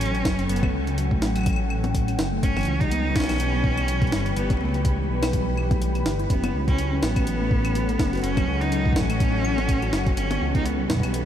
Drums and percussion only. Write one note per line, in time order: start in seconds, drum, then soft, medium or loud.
0.01 closed hi-hat medium
0.06 closed hi-hat soft
0.15 closed hi-hat soft
0.25 kick loud
0.25 snare loud
0.39 closed hi-hat soft
0.49 closed hi-hat medium
0.56 closed hi-hat medium
0.63 kick loud
0.63 high tom medium
0.63 claves medium
0.87 closed hi-hat soft
0.98 closed hi-hat medium
1.11 kick loud
1.22 snare loud
1.36 closed hi-hat medium
1.36 claves soft
1.38 claves soft
1.41 claves soft
1.43 kick loud
1.43 closed hi-hat medium
1.43 claves medium
1.46 claves medium
1.50 claves medium
1.53 claves medium
1.56 claves medium
1.70 claves medium
1.84 closed hi-hat soft
1.84 high tom medium
1.95 kick loud
1.95 closed hi-hat medium
2.08 closed hi-hat soft
2.08 claves soft
2.19 snare loud
2.43 kick loud
2.43 closed hi-hat medium
2.57 closed hi-hat soft
2.57 high tom medium
2.57 claves medium
2.59 closed hi-hat soft
2.61 closed hi-hat soft
2.63 closed hi-hat soft
2.65 closed hi-hat soft
2.81 kick loud
2.81 closed hi-hat soft
2.91 closed hi-hat medium
3.16 kick loud
3.16 snare loud
3.20 snare loud
3.24 snare medium
3.29 snare medium
3.29 closed hi-hat medium
3.29 claves medium
3.32 snare medium
3.36 snare soft
3.36 closed hi-hat medium
3.64 kick loud
3.78 closed hi-hat soft
3.78 claves medium
3.88 closed hi-hat medium
4.02 kick loud
4.02 closed hi-hat soft
4.07 closed hi-hat soft
4.12 snare loud
4.12 closed hi-hat soft
4.19 closed hi-hat soft
4.26 closed hi-hat soft
4.37 closed hi-hat medium
4.50 kick loud
4.50 closed hi-hat medium
4.50 high tom medium
4.53 high tom medium
4.57 high tom medium
4.61 high tom soft
4.65 high tom soft
4.69 high tom soft
4.74 closed hi-hat soft
4.85 kick loud
4.85 closed hi-hat medium
5.23 snare loud
5.23 closed hi-hat medium
5.23 claves medium
5.33 kick loud
5.33 closed hi-hat medium
5.57 claves medium
5.71 kick loud
5.71 closed hi-hat soft
5.71 high tom medium
5.82 closed hi-hat medium
5.95 closed hi-hat soft
5.95 claves soft
6.06 snare loud
6.19 closed hi-hat soft
6.30 kick loud
6.30 closed hi-hat medium
6.44 closed hi-hat soft
6.44 high tom medium
6.44 claves medium
6.68 kick loud
6.68 closed hi-hat soft
6.79 closed hi-hat medium
7.03 snare loud
7.16 kick loud
7.16 closed hi-hat soft
7.16 claves medium
7.27 closed hi-hat medium
7.51 kick loud
7.65 closed hi-hat soft
7.65 claves medium
7.75 closed hi-hat medium
7.89 closed hi-hat soft
7.99 kick loud
7.99 snare loud
8.13 closed hi-hat soft
8.15 closed hi-hat soft
8.17 closed hi-hat soft
8.19 closed hi-hat soft
8.22 closed hi-hat soft
8.24 closed hi-hat medium
8.37 kick loud
8.37 closed hi-hat soft
8.37 high tom loud
8.37 claves medium
8.61 closed hi-hat soft
8.72 closed hi-hat medium
8.85 kick loud
8.93 kick medium
8.93 snare loud
9.01 kick medium
9.10 closed hi-hat medium
9.10 claves medium
9.20 kick loud
9.20 closed hi-hat medium
9.45 claves medium
9.58 closed hi-hat soft
9.58 high tom medium
9.69 kick loud
9.69 closed hi-hat medium
9.82 closed hi-hat soft
9.82 claves soft
9.93 snare loud
10.06 kick loud
10.06 closed hi-hat soft
10.17 closed hi-hat medium
10.31 closed hi-hat medium
10.31 high tom loud
10.55 kick loud
10.55 closed hi-hat soft
10.66 closed hi-hat medium
10.90 kick soft
10.90 snare loud
10.93 kick medium
10.96 kick medium
11.00 kick loud
11.00 closed hi-hat medium
11.00 claves medium
11.14 closed hi-hat medium